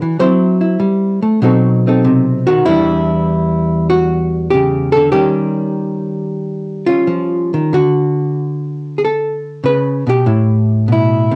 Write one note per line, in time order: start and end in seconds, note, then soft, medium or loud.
0.00 0.19 E3 medium
0.00 0.17 D4 soft
0.00 0.21 F#4 soft
0.00 0.19 B4 medium
0.19 0.79 F#3 medium
0.19 1.42 C4 soft
0.19 0.60 E4 soft
0.19 1.44 C5 medium
0.61 1.40 E4 soft
0.80 1.22 G3 medium
1.22 1.42 A3 medium
1.42 2.64 B2 medium
1.42 2.48 F#3 soft
1.42 1.86 C4 soft
1.42 1.86 D#4 medium
1.42 1.87 A4 soft
1.87 2.65 C4 soft
1.87 2.46 D#4 soft
1.87 2.65 A4 soft
2.05 2.48 C3 medium
2.47 2.67 D#3 medium
2.47 2.67 F#4 loud
2.66 5.14 E2 medium
2.66 4.95 E3 soft
2.66 5.12 G3 medium
2.66 3.30 D4 soft
2.66 3.89 E4 loud
3.90 4.50 F#4 medium
4.51 4.96 C#3 medium
4.51 4.92 G4 medium
4.92 5.11 A4 loud
4.97 5.12 D3 medium
5.12 7.07 D#3 medium
5.12 7.73 G3 soft
5.12 6.87 C#4 soft
5.12 7.72 G4 medium
6.86 7.72 C#4 soft
6.86 7.73 F4 medium
7.07 7.53 F3 medium
7.54 7.74 D#3 medium
7.73 9.63 D3 medium
7.73 9.45 F#4 medium
8.98 9.02 G#4 medium
9.05 9.65 A4 medium
9.64 10.06 C#3 medium
9.64 10.08 B4 medium
10.07 10.26 B2 medium
10.07 10.90 G4 medium
10.26 11.36 A2 medium
10.26 10.91 E4 soft
10.88 11.31 B2 medium
10.92 11.36 E4 medium
11.31 11.36 C3 medium